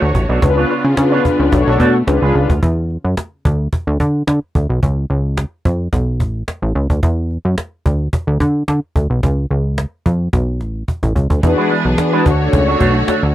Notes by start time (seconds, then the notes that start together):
Already playing: D3 A3 F#4 C#5
0.02 D2, muted clean electric guitar stroke
0.15 A1, muted clean electric guitar stroke, cajon bass
0.29 B1 A3 D4 F#4 D5
0.42 C#2 C#3 B3 D4 F4 G#4 B4, muted clean electric guitar stroke, cajon bass
0.57 B3 D4 F4 C#5
0.69 B3 D4 F4 C#5, cajon slap
0.84 C#3, muted clean electric guitar stroke
0.97 C#3 D4 F4 G#4 B4, muted clean electric guitar stroke, cajon slap
1.12 B3 D4 F4 C#5
1.25 muted clean electric guitar stroke, cajon bass
1.39 C#2, muted clean electric guitar stroke
1.52 B1 A3 D4 F#4 A4 C#5, muted clean electric guitar stroke, cajon bass
1.67 B1 A3 D4 F#4 C#5
1.80 B2 A3 D4 F#4 D5, cajon bass
1.94 muted clean electric guitar stroke
2.07 C#2 C#3 D4 F4 G#4 B4, muted clean electric guitar stroke, cajon slap
2.22 C#2 G#3 D4 F4 B4
2.35 C#2
2.50 D2, muted clean electric guitar stroke, cajon bass
2.63 E2, cajon bass
2.90 cajon slap
3.04 F#2
3.17 cajon slap
3.45 D2, cajon bass
3.73 cajon bass
3.87 D2
4.00 D3, cajon bass
4.15 cajon slap
4.27 D3, cajon slap
4.55 D2, cajon bass
4.69 B1
4.83 C#2, cajon bass
5.10 C#2, cajon slap
5.37 cajon slap
5.65 F2, cajon bass
5.93 B1, cajon bass
6.20 A1, cajon bass
6.35 cajon slap
6.48 cajon slap
6.62 A1
6.75 C#2, cajon slap
6.90 D2, cajon bass
7.03 E2, cajon bass
7.30 cajon slap
7.45 F#2
7.58 cajon slap
7.86 D2, cajon bass
8.13 cajon bass
8.27 D2
8.40 D3, cajon bass
8.55 cajon slap
8.68 D3, cajon slap
8.96 D2, cajon bass
9.10 B1
9.23 C#2, cajon bass
9.51 C#2, cajon slap
9.78 cajon slap
10.06 F2, cajon bass
10.33 B1, cajon bass, cajon slap
10.61 A1, cajon slap
10.75 cajon slap
10.88 cajon bass, cajon slap
11.03 A1, cajon bass
11.15 C#2, cajon bass
11.30 D2, cajon bass
11.43 E2 E3 B3 D4 F#4 G#4 B4, muted clean electric guitar stroke, cajon bass
11.57 G#3 D4 E4 B4
11.70 G#3 D4 E4 B4, cajon slap
11.85 B1
11.98 D4 F#4 G#4 B4, muted clean electric guitar stroke, cajon slap
12.13 G#3 D4 E4 B4
12.25 D2 D3 A3 D4 F#4 A4 C#5, muted clean electric guitar stroke, cajon bass
12.40 muted clean electric guitar stroke
12.53 C#2, muted clean electric guitar stroke, cajon bass
12.68 A3 D4 F#4 C#5
12.80 B1 A3 D4 F#4 C#5, cajon bass
12.95 muted clean electric guitar stroke
13.07 A3 D4 F#4 C#5, cajon slap
13.23 D2, muted clean electric guitar stroke